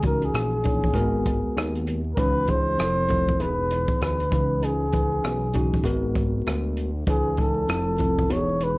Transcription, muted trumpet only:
0.06 0.26 A#4 medium
0.25 1.88 G#4 medium
2.13 2.21 A#4 medium
2.19 2.51 B4 loud
2.50 3.43 C5 loud
3.41 4.02 B4 medium
4.03 4.65 B4 medium
4.64 5.86 G#4 medium
7.09 7.41 G#4 medium
7.40 8.34 A4 medium
8.32 8.65 C#5 medium
8.63 8.78 B4 loud

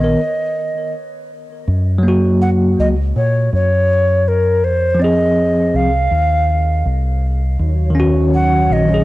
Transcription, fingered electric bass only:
0.00 0.15 A#1 medium
1.68 2.75 F#2 medium
2.79 3.11 C#2 medium
3.16 3.48 A#2 medium
3.53 4.63 F#2 medium
4.63 5.71 F2 medium
5.74 6.07 C2 medium
6.11 6.82 D#2 medium
6.85 7.56 C2 medium
7.59 8.67 D#2 medium
8.70 9.03 A#1 medium

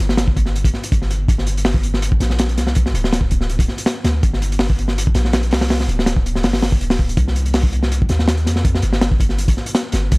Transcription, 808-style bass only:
0.00 0.72 G1 loud
0.92 1.27 G1 medium
1.28 2.19 G1 loud
2.20 2.59 A#1 loud
2.57 2.93 C2 medium
2.94 3.66 D1 loud
4.04 4.21 D2 medium
4.23 5.14 G1 medium
5.15 5.53 A#1 medium
5.52 5.87 C2 medium
5.88 6.45 D1 medium
6.44 6.82 G1 medium
6.81 7.16 D1 loud
7.17 8.08 C2 loud
8.10 8.48 D#2 loud
8.47 8.82 F2 medium
8.83 9.55 G1 loud
9.94 10.10 G1 medium
10.12 10.18 C2 loud

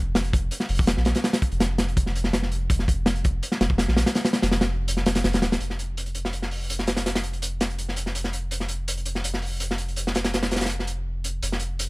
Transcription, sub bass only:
0.00 0.50 F1 loud
0.69 0.96 F1 loud
0.97 1.14 A#1 medium
1.52 2.68 F1 loud
2.70 3.41 F1 loud
3.61 3.87 F1 loud
3.88 4.05 A#1 medium
4.43 5.23 F1 loud
5.24 5.35 F1 medium
5.34 5.59 D#1 loud
5.60 11.41 F1 medium
11.42 11.89 F1 medium

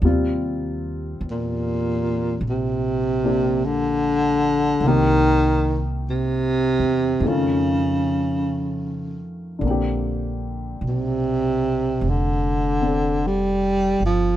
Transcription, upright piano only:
0.04 4.83 C3 soft
0.04 4.83 G3 soft
0.04 4.83 C4 soft
0.04 4.83 F4 soft
3.23 4.83 A#3 soft
3.23 4.84 D4 soft
3.23 4.84 G4 soft
4.83 7.21 D#3 soft
4.83 7.23 A#3 soft
4.83 7.24 C4 soft
4.88 7.25 G4 soft
7.23 9.63 D#3 soft
7.23 9.64 A3 soft
7.23 9.65 C#4 soft
7.28 9.66 F4 soft
9.59 14.37 D3 soft
9.59 14.37 A#3 soft
9.66 12.80 C4 soft
9.66 14.37 G4 soft
12.81 14.37 C4 soft
12.81 14.37 D4 soft
12.81 14.37 A4 soft

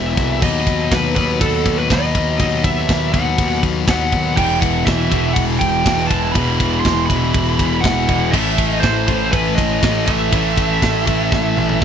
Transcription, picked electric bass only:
0.00 0.15 E1 loud
0.17 0.40 C2 loud
0.42 0.87 D#2 loud
0.91 1.14 D#2 medium
1.16 1.39 D#2 loud
1.41 1.64 D#2 medium
1.66 1.88 D#2 loud
1.91 2.13 D#2 medium
2.15 2.38 D#2 medium
2.40 2.85 D#2 loud
2.89 3.12 D#2 medium
3.14 3.36 D#2 medium
3.38 3.61 D#2 medium
3.63 3.86 D#2 medium
3.87 4.10 D#2 medium
4.13 4.35 D#2 medium
4.37 4.83 E1 medium
4.87 5.09 E1 medium
5.12 5.34 E1 medium
5.36 5.59 E1 loud
5.61 5.84 E1 loud
5.86 6.09 E1 medium
6.10 6.33 E1 medium
6.36 6.81 E1 medium
6.85 7.08 E1 medium
7.10 7.33 E1 medium
7.34 7.57 E1 medium
7.59 7.82 E1 loud
7.84 8.07 E1 medium
8.09 8.32 E1 medium
8.33 8.79 A1 medium
8.83 9.06 A1 medium
9.08 9.31 A1 loud
9.33 9.56 A1 loud
9.58 9.81 A1 loud
9.83 10.06 A1 loud
10.08 10.31 A1 medium
10.33 10.78 A1 medium
10.83 11.06 A1 medium
11.07 11.30 A1 loud
11.32 11.55 A1 loud
11.58 11.80 A1 medium

